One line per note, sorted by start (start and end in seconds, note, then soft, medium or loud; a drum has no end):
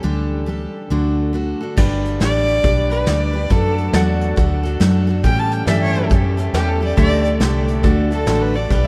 0.03 0.66 D2 medium
0.03 0.47 D3 medium
0.03 0.45 G3 medium
0.03 0.46 D4 medium
0.03 0.47 G4 medium
0.03 0.48 A4 medium
0.46 0.90 G3 medium
0.46 0.90 D4 medium
0.46 0.91 G4 medium
0.46 0.91 A4 medium
0.90 1.52 D2 medium
0.90 1.34 D3 medium
0.90 1.32 A3 medium
0.90 1.33 D4 medium
0.90 1.34 F#4 medium
0.90 1.34 A4 medium
1.33 1.61 A3 medium
1.33 1.62 D4 medium
1.33 1.61 F#4 medium
1.33 1.59 A4 medium
1.61 1.77 D4 soft
1.61 1.78 F#4 soft
1.61 1.77 A4 medium
1.77 2.19 G1 medium
1.77 2.19 G3 medium
1.77 2.21 D4 medium
1.77 2.21 G4 medium
1.77 2.21 B4 medium
1.77 3.49 D5 medium
1.77 3.50 G5 medium
1.77 kick loud
1.77 crash medium
2.05 closed hi-hat medium
2.20 2.63 A1 medium
2.20 2.62 G3 medium
2.20 2.64 D4 medium
2.20 2.64 G4 medium
2.20 2.65 B4 medium
2.20 2.89 D5 loud
2.20 snare loud
2.20 closed hi-hat medium
2.48 closed hi-hat medium
2.63 3.06 B1 medium
2.63 2.91 G3 medium
2.63 2.92 D4 medium
2.63 2.91 G4 medium
2.63 2.89 B4 medium
2.63 kick loud
2.63 closed hi-hat medium
2.90 3.06 D4 soft
2.90 3.07 G4 soft
2.90 3.07 B4 medium
2.90 3.09 B4 medium
2.90 closed hi-hat medium
3.06 3.49 D2 medium
3.06 3.34 G3 medium
3.06 3.35 D4 medium
3.06 3.34 G4 medium
3.06 3.32 B4 medium
3.06 3.52 D5 medium
3.06 snare loud
3.06 closed hi-hat medium
3.33 3.50 D4 soft
3.33 3.51 G4 soft
3.33 3.50 B4 medium
3.50 3.93 F#2 medium
3.50 3.92 F#3 medium
3.50 3.93 A3 medium
3.50 3.93 D4 medium
3.50 3.94 F#4 medium
3.50 3.93 A4 medium
3.50 3.95 A4 medium
3.50 kick loud
3.50 closed hi-hat medium
3.78 closed hi-hat medium
3.93 4.36 E2 medium
3.93 4.37 F#3 medium
3.93 4.36 A3 medium
3.93 4.36 D4 medium
3.93 4.37 F#4 medium
3.93 4.39 A4 medium
3.93 5.23 D5 medium
3.93 5.24 F#5 medium
3.93 snare loud
3.93 closed hi-hat medium
4.21 closed hi-hat medium
4.36 4.79 D2 medium
4.36 4.64 A3 medium
4.36 4.65 D4 medium
4.36 4.64 F#4 medium
4.36 4.62 A4 medium
4.36 kick loud
4.36 closed hi-hat medium
4.63 4.80 D4 soft
4.63 4.80 F#4 medium
4.63 4.80 A4 medium
4.63 closed hi-hat medium
4.80 5.22 F#2 medium
4.80 5.08 F#3 medium
4.80 5.08 A3 medium
4.80 5.08 D4 medium
4.80 5.07 F#4 medium
4.80 5.06 A4 medium
4.80 snare loud
4.80 closed hi-hat medium
5.07 5.25 D4 soft
5.07 5.24 F#4 medium
5.07 5.24 A4 medium
5.24 5.66 A2 medium
5.24 5.66 E3 medium
5.24 5.67 G3 medium
5.24 5.67 C#4 medium
5.24 5.67 G4 medium
5.24 5.68 A4 medium
5.24 5.40 G5 medium
5.24 kick loud
5.24 closed hi-hat medium
5.39 5.54 A5 medium
5.51 5.67 G5 medium
5.51 closed hi-hat medium
5.67 6.09 G2 medium
5.67 6.10 A2 medium
5.67 6.11 E3 medium
5.67 6.08 G3 medium
5.67 6.09 C#4 medium
5.67 6.10 G4 medium
5.67 6.12 A4 medium
5.67 5.88 D5 medium
5.67 5.81 E5 medium
5.67 6.97 E5 medium
5.67 snare loud
5.67 closed hi-hat medium
5.82 6.05 C#5 medium
5.88 6.96 C#5 medium
5.95 closed hi-hat medium
6.10 6.53 F#2 medium
6.10 6.38 G3 medium
6.10 6.38 C#4 medium
6.10 6.37 G4 medium
6.10 6.36 A4 medium
6.10 kick loud
6.10 closed hi-hat medium
6.37 6.53 G3 soft
6.37 6.54 C#4 medium
6.37 6.54 G4 medium
6.37 6.54 A4 medium
6.37 closed hi-hat medium
6.53 6.96 E2 medium
6.53 6.81 A2 medium
6.53 6.82 E3 medium
6.53 6.82 G3 medium
6.53 6.81 C#4 medium
6.53 6.70 G4 medium
6.53 6.81 G4 medium
6.53 6.79 A4 medium
6.53 snare loud
6.53 closed hi-hat medium
6.69 6.83 A4 medium
6.81 6.97 G3 soft
6.81 6.97 C#4 soft
6.81 6.97 G4 soft
6.81 6.97 A4 medium
6.81 6.97 D5 medium
6.97 7.39 D2 medium
6.97 7.39 D3 medium
6.97 7.39 A3 medium
6.97 7.41 D4 medium
6.97 7.40 G4 medium
6.97 7.82 A4 medium
6.97 7.41 A4 medium
6.97 7.24 D5 loud
6.97 7.23 E5 medium
6.97 kick loud
6.97 closed hi-hat medium
7.23 7.83 D5 medium
7.23 closed hi-hat medium
7.40 7.82 C2 medium
7.40 7.84 D3 medium
7.40 7.82 A3 medium
7.40 7.84 D4 medium
7.40 7.84 G4 medium
7.40 7.85 A4 medium
7.40 snare loud
7.40 closed hi-hat medium
7.68 closed hi-hat medium
7.83 8.26 D2 medium
7.83 8.11 A3 medium
7.83 8.12 D4 medium
7.83 8.11 F#4 medium
7.83 8.70 A4 medium
7.83 8.09 A4 medium
7.83 8.70 D5 medium
7.83 kick loud
7.83 closed hi-hat medium
8.11 8.26 D4 soft
8.11 8.27 F#4 soft
8.11 8.27 A4 medium
8.11 8.43 A4 medium
8.11 closed hi-hat medium
8.26 8.69 A1 medium
8.26 8.54 D3 medium
8.26 8.54 A3 medium
8.26 8.55 D4 medium
8.26 8.54 F#4 medium
8.26 8.53 A4 medium
8.26 snare loud
8.26 closed hi-hat medium
8.41 8.57 B4 medium
8.54 8.70 D4 soft
8.54 8.71 F#4 soft
8.54 8.70 A4 soft
8.54 8.86 D5 medium
8.70 8.87 B1 medium
8.70 8.87 G3 medium
8.70 8.87 D4 medium
8.70 8.87 G4 medium
8.70 8.87 B4 medium
8.70 kick loud
8.70 closed hi-hat medium